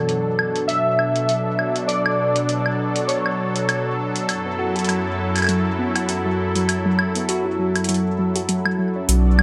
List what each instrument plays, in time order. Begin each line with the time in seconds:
Already playing: analog synth pad B2 F#3 D4 A4, synth keys A4
0.09 closed hi-hat
0.39 high woodblock
0.56 closed hi-hat
0.68 synth keys E5, closed hi-hat
0.99 high woodblock
1.16 closed hi-hat
1.29 closed hi-hat
1.59 high woodblock
1.76 closed hi-hat
1.88 synth keys D5, closed hi-hat
2.06 high woodblock
2.36 closed hi-hat
2.49 closed hi-hat
2.66 high woodblock
2.96 closed hi-hat
3.08 synth keys C#5, closed hi-hat
3.26 high woodblock
3.56 closed hi-hat
3.69 closed hi-hat, high woodblock
4.16 closed hi-hat
4.29 analog synth pad F#2 E4, closed hi-hat, high woodblock
4.46 synth pluck B3
4.59 synth pluck F#4
4.76 synth pluck F#4, closed hi-hat
4.79 closed hi-hat
4.84 closed hi-hat
4.89 synth pluck F#3, closed hi-hat, high woodblock
5.19 synth pluck F#3
5.36 closed hi-hat, high woodblock
5.38 closed hi-hat, high woodblock
5.42 closed hi-hat, high woodblock
5.44 closed hi-hat, high woodblock
5.47 synth pluck F#3, closed hi-hat, high woodblock
5.49 closed hi-hat
5.79 synth pluck B3
5.96 synth pluck F#4, closed hi-hat, high woodblock
6.09 synth pluck F#4, closed hi-hat
6.26 synth pluck F#3
6.56 synth pluck F#3, closed hi-hat
6.69 closed hi-hat, high woodblock
6.86 synth pluck F#3
6.99 high woodblock
7.15 synth pluck B3, closed hi-hat
7.29 synth pluck F#4, closed hi-hat
7.46 synth pluck F#4
7.59 synth pluck F#3
7.76 closed hi-hat, high woodblock
7.84 closed hi-hat
7.89 synth pluck F#3, closed hi-hat
7.94 closed hi-hat
8.19 synth pluck F#3
8.36 synth pluck F#4, closed hi-hat
8.49 synth pluck F#3, closed hi-hat
8.66 synth pluck F#3, high woodblock
8.79 synth pluck F#3
8.96 synth pluck C#4
9.09 analog synth bass B1, synth pluck F#3, analog synth pad B3 F#4 A4 D5, closed hi-hat
9.39 synth pluck F#3, high woodblock